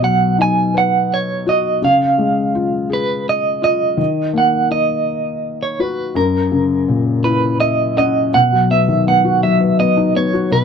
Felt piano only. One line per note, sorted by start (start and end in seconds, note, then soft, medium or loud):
0.00 1.79 B2 medium
0.00 1.43 F#3 soft
0.38 1.79 D#4 soft
0.74 1.79 B4 soft
1.47 1.82 F#4 soft
1.82 3.95 C#3 medium
2.18 3.59 G#3 soft
2.55 3.60 F4 soft
2.90 3.95 G#4 soft
3.62 3.97 F4 soft
3.97 6.11 D#3 medium
4.34 5.75 A#3 soft
4.70 6.11 D#4 soft
5.80 6.15 F#4 medium
6.15 8.29 F#2 medium
6.52 7.93 C#3 soft
6.88 8.30 A#2 soft
7.24 8.30 E4 soft
7.61 7.95 E5 medium
7.97 8.32 C#4 soft
7.97 8.31 F#5 medium
8.34 10.47 B2 soft
8.52 9.41 F#3 soft
8.70 9.05 B3 soft
8.88 10.29 D#3 soft
9.07 9.78 B3 soft
9.25 10.32 F#4 soft
9.43 10.48 F#3 medium
9.61 10.48 B4 soft
9.79 10.14 B3 soft
9.97 10.49 D#4 soft
10.15 10.50 B3 soft
10.33 10.51 F#4 soft
10.51 10.64 B2 medium